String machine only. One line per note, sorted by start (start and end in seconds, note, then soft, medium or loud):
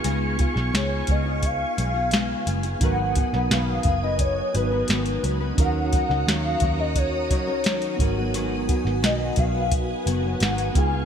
0.00 5.53 B3 medium
0.00 2.78 F5 medium
0.00 5.53 G#5 medium
0.00 2.78 C#6 loud
2.82 10.72 F#4 medium
2.82 5.55 D#6 medium
5.58 7.97 C#5 medium
5.58 7.97 A#5 medium
5.58 10.72 D#6 medium
7.99 11.05 B3 medium
7.99 10.72 G#5 medium
10.74 11.05 F5 medium
10.74 11.05 G#5 medium
10.74 11.05 C#6 loud